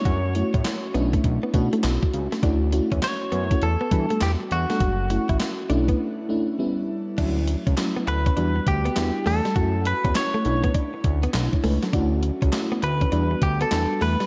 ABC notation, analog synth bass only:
X:1
M:4/4
L:1/16
Q:"Swing 16ths" 1/4=101
K:D
V:1 name="Analog synth bass" clef=bass
F,,3 A,, z2 B,,,2 B,,, z B,, z B,,, z C,, z | D,,3 E,, z2 F,,2 E,, z E, z E,, z E,, z | F,,,3 A,,, z2 B,,,2 z8 | D,,3 C,, z2 D,,2 E,,2 D,,2 E,, z E,, z |
F,,3 E,, z2 B,,,2 z2 D,,2 B,,, z C,, z | D,,3 C,, z2 D,,2 E,,2 D,,2 E,, z E,, z |]